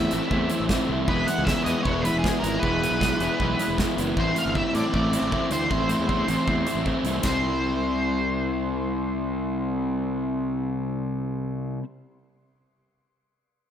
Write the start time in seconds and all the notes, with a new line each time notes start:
Already playing: A2 E3 A3 C4 E4 E5
0.11 A1 A2 E3 A3 C4 E4, closed hi-hat
0.30 E2 A2 E3 A3 C4 E4, kick
0.50 A2 E3 A3 C4 E4, closed hi-hat
0.60 A1
0.69 A2 E3 A3 C4 E4, kick, snare
0.88 C2 A2 E3 A3 C4 E4, high tom
1.07 E1 E3 G#3 B3 E4 B4, kick
1.27 E3 G#3 B3 E4 F#5, closed hi-hat
1.38 C#2
1.45 E3 G#3 B3 E4 E5, kick, snare
1.64 E2 E3 G#3 B3 E4 D#5, closed hi-hat
1.83 E1 E3 G#3 B3 C#5, kick
1.87 E4
2.02 E3 G#3 B3 B4, closed hi-hat
2.06 E4
2.14 E1
2.19 G#4
2.24 E3 G#3 B3 E4, kick, snare
2.40 G#1 E3 G#3 A#4, closed hi-hat
2.44 B3 E4
2.59 E1 E3 G#3 B4, kick
2.64 B3 E4
2.82 E3 G#3 B3 E4, closed hi-hat
2.91 B1
3.01 E3 G#3 B3 E4, kick, snare
3.20 E1 E3 G#3 B3 E4, snare, closed hi-hat
3.39 B1 E3 G#3 B3 E4, kick
3.59 E3 G#3 B3 E4, closed hi-hat
3.68 E1
3.77 E3 G#3 B3 E4, kick, snare
3.97 F#1 E3 G#3 B3 E4, closed hi-hat
4.16 A1 A2 E3 A3 C4 E4 C5, kick
4.36 A2 E3 A3 C4 E4 F5, closed hi-hat
4.46 G1
4.55 A2 E3 A3 C4 E4 E5, kick
4.75 A2 E3 A3 C4 E4 D5, closed hi-hat
4.93 A1 A2 E3 A3 C4 E4, kick
5.12 A2 E3 A3 C4 E4, closed hi-hat
5.22 A1
5.31 A2 E3 A3 C4 E4, kick
5.50 D2 A2 E3 A3 C4 E4 C5, closed hi-hat
5.69 A1 A2 E3 A3 C4 E4, kick
5.88 A2 E3 A3 C4 E4, closed hi-hat
5.99 E2
6.08 A2 E3 A3 C4 E4, kick
6.27 A1 A2 E3 A3 C4 E4, closed hi-hat
6.47 E2 A2 E3 A3 C4 E4, kick
6.66 A2 E3 A3 C4 E4, closed hi-hat
6.75 A1
6.84 A2 E3 A3 C4 E4, kick
7.04 C2 A2 E3 A3 C4 E4, closed hi-hat
7.23 C2 C3 G3 C4 C5, kick, snare, ride bell
7.28 E4